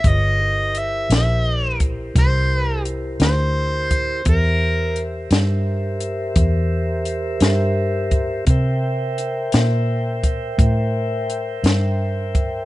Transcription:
<<
  \new Staff \with { instrumentName = "Harmonica" } { \time 12/8 \key c \mixolydian \tempo 4. = 57 ees''4 e''8 e''4 r8 c''4 r8 c''4. | bes'4 r1 r4 | r1. | }
  \new Staff \with { instrumentName = "Tonewheel organ" } { \time 12/8 \key c \mixolydian <f' aes' b' des''>8 <e' g' bes' c''>1~ <e' g' bes' c''>4. | <g' bes' c'' e''>1. | <bes' c'' e'' g''>1. | }
  \new Staff \with { instrumentName = "Fingered electric bass" } { \clef bass \time 12/8 \key c \mixolydian g,,4. bes,,4. c,4. d,4. | e,4. g,4. e,4. g,4. | c4. bes,4. a,4. g,4. | }
  \new DrumStaff \with { instrumentName = "Drums" } \drummode { \time 12/8 <hh bd>4 hh8 <hh sn>4 <hh bd>8 <hh bd sn>4 hh8 <hh sn>4 <hh bd>8 | <hh bd>4 hh8 <hh sn>4 hh8 <hh bd>4 hh8 <hh sn>4 <hh bd>8 | <hh bd>4 hh8 <hh sn>4 <hh bd>8 <hh bd>4 hh8 <hh sn>4 <hh bd>8 | }
>>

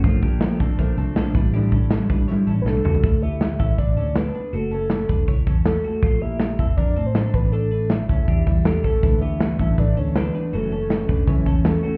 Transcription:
<<
  \new Staff \with { instrumentName = "Soft synth lead" } { \time 4/4 \key d \major \tempo 4 = 160 r1 | r2 r8. r32 b'32 a'8 a'8~ | a'8 e''4 e''8 d''4 b'4 | a'8 a'4. r4 a'8 a'8~ |
a'8 e''4 e''8 d''8. c''8. b'8 | a'4 e''2 a'8 a'8~ | a'8 e''4 e''8 d''8 cis''8 b'4 | a'8 a'4. r4 a'8 a'8 | }
  \new Staff \with { instrumentName = "Clean electric guitar" } { \time 4/4 \key d \major <a f'>8 <bes g'>4 <c' a'>8 <d' bes'>8 <c' a'>8 <d' a'>8 <d' b'>8 | <d' g'>8 <cis' a'>4 <d' b'>8 <e' cis''>8 <cis' a'>8 <d' a'>8 <a fis'>8 | <a e'>8 <b g'>4 <cis' a'>8 <d' b'>8 <cis' a'>8 <d' a'>8 <d' b'>8 | <a fis'>8 <cis' a'>4 <d' b'>8 <e' cis''>8 <cis' a'>8 <cis' a'>8 <a fis'>8 |
<a f'>8 <bes g'>4 <c' a'>8 <d' bes'>8 <c' a'>8 <d' a'>8 <d' b'>8 | <d' a'>8 <d' b'>4 <cis' a'>8 <d' g'>8 <g e'>8 <d' g'>8 <cis' a'>8 | <a e'>8 <b g'>4 <cis' a'>8 <d' b'>8 <cis' a'>8 <d' a'>8 <d' b'>8 | <a fis'>8 <cis' a'>4 <d' b'>8 <e' cis''>8 <cis' a'>8 <cis' a'>8 <a fis'>8 | }
  \new Staff \with { instrumentName = "Steel-string acoustic guitar" } { \time 4/4 \key d \major <bes, f a d'>8 <f a d'>8 <bes, f a d'>8 <f a d'>8 <bes, f a d'>8 <f a d'>8 <bes, f a d'>8 <g d' e'>8 | <a, d g d' e'>8 <g d' e'>8 <d g d' e'>8 <g d' e'>8 <a, d g d' e'>8 <g d' e'>8 <d g d' e'>8 <g d' e'>8 | r1 | r1 |
r1 | r1 | <d e a d'>8 <e a d'>8 <d e a d'>8 <e a d'>8 <d e a d'>8 <e a d'>8 <d e a d'>8 <e a d'>8 | <fis, cis e a cis'>8 <e a cis'>8 <cis e a cis'>8 <e a cis'>8 <fis, cis e a cis'>8 <e a cis'>8 <cis e a cis'>8 <e a cis'>8 | }
  \new Staff \with { instrumentName = "Fingered electric bass" } { \clef bass \time 4/4 \key d \major bes,,2~ bes,,8 c,8 bes,,8 a,,8~ | a,,2~ a,,8 a,,8 b,,8 cis,8 | d,4. a,,8 a,,8 d,4 r8 | fis,,4. e,,8 cis,8 e,4 r8 |
bes,,4. f,,8 f,8 a,4 a,,8~ | a,,4. d,8 e,8 e,4 r8 | d,4. a,,8 a,,8 d,4 r8 | fis,,4. e,,8 cis,8 e,4 r8 | }
  \new DrumStaff \with { instrumentName = "Drums" } \drummode { \time 4/4 <hh bd>8 <hh bd>8 <hh sn>8 <hh bd>8 <hh bd>8 hh8 <hh sn>8 <hh bd>8 | hh8 <hh bd>8 <hh sn>8 <hh bd>8 hh8 hh8 sn8 toml16 tomfh16 | <hh bd>8 hh8 <hh sn>8 <hh bd>8 <hh bd>8 hh8 <hh sn>8 hh8 | hh8 hh8 <hh sn>8 <hh bd>8 <hh bd>8 <hh bd>8 <hh sn>8 hh8 |
<hh bd>8 hh8 <hh sn>8 <hh bd>8 <hh bd>8 hh8 <hh sn>8 <hh bd>8 | hh8 hh8 <hh sn>8 <hh bd>8 <hh bd>8 <hh bd>8 <hh sn>8 <hh bd>8 | <hh bd>8 hh8 <hh sn>8 <hh bd>8 <hh bd>8 hh8 <hh sn>8 hh8 | hh8 hh8 <hh sn>8 <hh bd>8 <hh bd>8 <hh bd>8 <hh sn>8 hh8 | }
>>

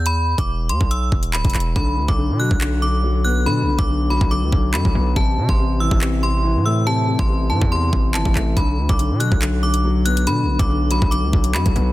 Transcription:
<<
  \new Staff \with { instrumentName = "Synth bell" } { \time 4/4 \key b \phrygian \tempo 4 = 141 b''8. d'''8. c'''8 e'''4 b''4 | b''8. d'''8. fis'''4 d'''4 fis'''8 | b''8. d'''8. b''8 d'''4 b''4 | a''8. c'''8. e'''4 c'''4 e'''8 |
a''8. c'''8. a''8 c'''4 a''4 | b''8. d'''8. fis'''4 d'''4 fis'''8 | b''8. d'''8. b''8 d'''4 b''4 | }
  \new Staff \with { instrumentName = "Grand piano" } { \clef bass \time 4/4 \key b \phrygian r1 | d8 d8 d8 fis8 d8 d8 fis8 b8 | d8 d8 d8 fis8 d8 d8 fis8 b8 | c8 c8 c8 e8 c8 c8 e8 a8 |
c8 c8 c8 e8 c8 c8 e8 a8 | d8 d8 d8 fis8 d8 d8 fis8 b8 | d8 d8 d8 fis8 d8 d8 fis8 b8 | }
  \new Staff \with { instrumentName = "808-style bass" } { \clef bass \time 4/4 \key b \phrygian e,8. e,,8. e,16 b,,8. e,,8 d,,16 e,,16 e,,8 | b,,8 d,16 b,,8 b,8 b,,2~ b,,16 | b,16. b,,16. b,,4 b,,8 d,16 b,,8 fis,16 b,,16 b,,8 | a,,8 c16 a,,4 a,,4. a,8.~ |
a,8. a,,8. a,16 e,8. a,,8 g,,16 a,,16 a,,8 | b,,8 d,16 b,,8 b,8 b,,2~ b,,16 | b,16. b,,16. b,,4 b,,8 d,16 b,,8 fis,16 b,,16 b,,8 | }
  \new DrumStaff \with { instrumentName = "Drums" } \drummode { \time 4/4 hh8. <hh bd>16 r8 hh16 bd16 hh8 bd16 hh16 hc16 <hh bd>32 hh32 <hc hh>32 hh16. | bd8. bd16 r8. bd16 hc4 r4 | r8. bd16 r8. bd16 r8 bd8 hc16 bd8. | bd8. bd16 r8. bd16 hc4 r4 |
r8. bd16 r8. bd16 r8 bd8 hc16 bd16 hc8 | <hh bd>8. <hh bd>16 hh8 hh16 bd16 <hc hh>8. hh16 r8 hh16 hh16 | hh8. <hh bd>16 r8 hh16 bd16 hh8 bd16 hh16 hc16 <hh bd>16 hh8 | }
>>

